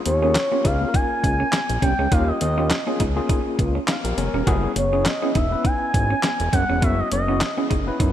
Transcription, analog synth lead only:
0, 0, Header, 1, 2, 480
1, 0, Start_track
1, 0, Tempo, 588235
1, 1728, Time_signature, 4, 2, 24, 8
1, 6630, End_track
2, 0, Start_track
2, 0, Title_t, "Analog synth lead"
2, 0, Program_c, 0, 81
2, 57, Note_on_c, 0, 73, 98
2, 532, Note_on_c, 0, 77, 109
2, 544, Note_off_c, 0, 73, 0
2, 773, Note_on_c, 0, 80, 125
2, 785, Note_off_c, 0, 77, 0
2, 1491, Note_on_c, 0, 79, 107
2, 1503, Note_off_c, 0, 80, 0
2, 1730, Note_on_c, 0, 77, 104
2, 1743, Note_off_c, 0, 79, 0
2, 1859, Note_on_c, 0, 75, 92
2, 1871, Note_off_c, 0, 77, 0
2, 1967, Note_off_c, 0, 75, 0
2, 1973, Note_on_c, 0, 75, 93
2, 2418, Note_off_c, 0, 75, 0
2, 3895, Note_on_c, 0, 73, 88
2, 4131, Note_on_c, 0, 75, 100
2, 4144, Note_off_c, 0, 73, 0
2, 4373, Note_on_c, 0, 76, 112
2, 4385, Note_off_c, 0, 75, 0
2, 4614, Note_on_c, 0, 80, 121
2, 4626, Note_off_c, 0, 76, 0
2, 5328, Note_on_c, 0, 78, 100
2, 5341, Note_off_c, 0, 80, 0
2, 5572, Note_on_c, 0, 76, 97
2, 5585, Note_off_c, 0, 78, 0
2, 5705, Note_on_c, 0, 75, 91
2, 5717, Note_off_c, 0, 76, 0
2, 5810, Note_off_c, 0, 75, 0
2, 5814, Note_on_c, 0, 75, 88
2, 6259, Note_off_c, 0, 75, 0
2, 6630, End_track
0, 0, End_of_file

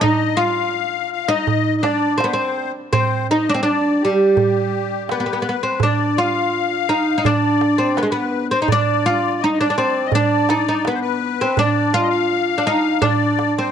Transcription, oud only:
0, 0, Header, 1, 2, 480
1, 0, Start_track
1, 0, Tempo, 722892
1, 13, Time_signature, 4, 2, 24, 8
1, 9107, End_track
2, 0, Start_track
2, 0, Title_t, "Oud"
2, 0, Program_c, 0, 24
2, 8, Note_on_c, 0, 63, 97
2, 242, Note_off_c, 0, 63, 0
2, 245, Note_on_c, 0, 65, 92
2, 850, Note_off_c, 0, 65, 0
2, 853, Note_on_c, 0, 63, 85
2, 1212, Note_off_c, 0, 63, 0
2, 1215, Note_on_c, 0, 62, 69
2, 1443, Note_off_c, 0, 62, 0
2, 1445, Note_on_c, 0, 60, 72
2, 1487, Note_on_c, 0, 59, 65
2, 1492, Note_off_c, 0, 60, 0
2, 1539, Note_off_c, 0, 59, 0
2, 1550, Note_on_c, 0, 60, 69
2, 1796, Note_off_c, 0, 60, 0
2, 1943, Note_on_c, 0, 60, 84
2, 2161, Note_off_c, 0, 60, 0
2, 2198, Note_on_c, 0, 63, 82
2, 2308, Note_off_c, 0, 63, 0
2, 2320, Note_on_c, 0, 62, 86
2, 2351, Note_off_c, 0, 62, 0
2, 2353, Note_on_c, 0, 60, 74
2, 2392, Note_off_c, 0, 60, 0
2, 2409, Note_on_c, 0, 62, 85
2, 2672, Note_off_c, 0, 62, 0
2, 2687, Note_on_c, 0, 55, 70
2, 3396, Note_on_c, 0, 59, 66
2, 3435, Note_off_c, 0, 59, 0
2, 3452, Note_on_c, 0, 59, 49
2, 3485, Note_off_c, 0, 59, 0
2, 3493, Note_on_c, 0, 59, 51
2, 3531, Note_off_c, 0, 59, 0
2, 3539, Note_on_c, 0, 59, 51
2, 3581, Note_off_c, 0, 59, 0
2, 3599, Note_on_c, 0, 59, 59
2, 3602, Note_off_c, 0, 55, 0
2, 3636, Note_off_c, 0, 59, 0
2, 3644, Note_on_c, 0, 59, 54
2, 3683, Note_off_c, 0, 59, 0
2, 3738, Note_on_c, 0, 60, 61
2, 3858, Note_off_c, 0, 60, 0
2, 3871, Note_on_c, 0, 62, 83
2, 4102, Note_off_c, 0, 62, 0
2, 4105, Note_on_c, 0, 65, 83
2, 4573, Note_off_c, 0, 65, 0
2, 4576, Note_on_c, 0, 63, 78
2, 4758, Note_off_c, 0, 63, 0
2, 4766, Note_on_c, 0, 63, 64
2, 4811, Note_off_c, 0, 63, 0
2, 4821, Note_on_c, 0, 62, 85
2, 5165, Note_off_c, 0, 62, 0
2, 5168, Note_on_c, 0, 60, 66
2, 5292, Note_off_c, 0, 60, 0
2, 5297, Note_on_c, 0, 59, 64
2, 5327, Note_off_c, 0, 59, 0
2, 5329, Note_on_c, 0, 56, 61
2, 5379, Note_off_c, 0, 56, 0
2, 5391, Note_on_c, 0, 59, 71
2, 5652, Note_on_c, 0, 60, 68
2, 5662, Note_off_c, 0, 59, 0
2, 5719, Note_off_c, 0, 60, 0
2, 5723, Note_on_c, 0, 63, 61
2, 5769, Note_off_c, 0, 63, 0
2, 5791, Note_on_c, 0, 62, 96
2, 6013, Note_off_c, 0, 62, 0
2, 6015, Note_on_c, 0, 65, 94
2, 6259, Note_off_c, 0, 65, 0
2, 6267, Note_on_c, 0, 63, 81
2, 6375, Note_off_c, 0, 63, 0
2, 6378, Note_on_c, 0, 62, 75
2, 6433, Note_off_c, 0, 62, 0
2, 6441, Note_on_c, 0, 62, 60
2, 6488, Note_off_c, 0, 62, 0
2, 6492, Note_on_c, 0, 60, 75
2, 6738, Note_off_c, 0, 60, 0
2, 6740, Note_on_c, 0, 62, 94
2, 6968, Note_off_c, 0, 62, 0
2, 6971, Note_on_c, 0, 63, 78
2, 7087, Note_off_c, 0, 63, 0
2, 7095, Note_on_c, 0, 63, 71
2, 7216, Note_off_c, 0, 63, 0
2, 7221, Note_on_c, 0, 59, 73
2, 7578, Note_on_c, 0, 60, 71
2, 7585, Note_off_c, 0, 59, 0
2, 7692, Note_off_c, 0, 60, 0
2, 7695, Note_on_c, 0, 62, 98
2, 7925, Note_off_c, 0, 62, 0
2, 7928, Note_on_c, 0, 65, 95
2, 8349, Note_off_c, 0, 65, 0
2, 8352, Note_on_c, 0, 62, 68
2, 8404, Note_off_c, 0, 62, 0
2, 8411, Note_on_c, 0, 63, 90
2, 8641, Note_off_c, 0, 63, 0
2, 8643, Note_on_c, 0, 62, 94
2, 9017, Note_off_c, 0, 62, 0
2, 9020, Note_on_c, 0, 60, 68
2, 9107, Note_off_c, 0, 60, 0
2, 9107, End_track
0, 0, End_of_file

